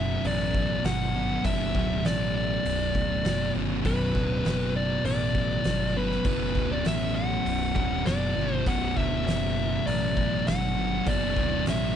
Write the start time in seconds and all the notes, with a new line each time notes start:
Already playing: F#1 B1 F#2 B2 E5
0.25 A1 D5, open hi-hat
0.54 B1 F#2 B2, kick
0.83 G1 B1 F#2 B2 F#5, snare, open hi-hat
1.15 B1 F#2 B2
1.44 F#1 B1 F#2 B2 E5, kick, open hi-hat
1.75 D1, kick
2.04 A1 D5, snare, open hi-hat
2.36 D5
2.65 B0, open hi-hat
2.94 D1 B1 F#2 B2, kick
3.24 F#1 B1 F#2 B2, snare, open hi-hat
3.54 G1 B1 F#2 B2
3.84 B0 B1 F#2 B2 B4, kick, open hi-hat
4.15 D1, kick
4.45 F#1, snare, open hi-hat
4.76 D5
5.04 A1 D5, open hi-hat
5.34 B1 F#2 B2, kick
5.64 G1 B1 F#2 B2, snare, open hi-hat
5.94 B1 F#2 B2 B4
6.11 snare
6.24 F#1 B1 F#2 B2, kick, open hi-hat
6.55 D1, kick
6.72 D5
6.85 A1 E5, snare, open hi-hat
7.16 F#5
7.45 B0, open hi-hat
7.75 D1 B1 F#2 B2, kick
8.06 F#1 B1 F#2 B2 D5, snare, open hi-hat
8.36 G1 B1 F#2 B2
8.54 C5
8.65 B0 B1 F#2 B2 F#5, kick, open hi-hat
8.96 D1 E5, kick
9.26 F#1, snare, open hi-hat
9.86 A1 D5, open hi-hat
10.15 B1 F#2 B2, kick
10.45 G1 B1 F#2 B2 F#5, snare, open hi-hat
10.77 B1 F#2 B2
11.05 F#1 B1 F#2 B2 D5, kick, open hi-hat
11.36 D1, kick
11.66 A1 E5, snare, open hi-hat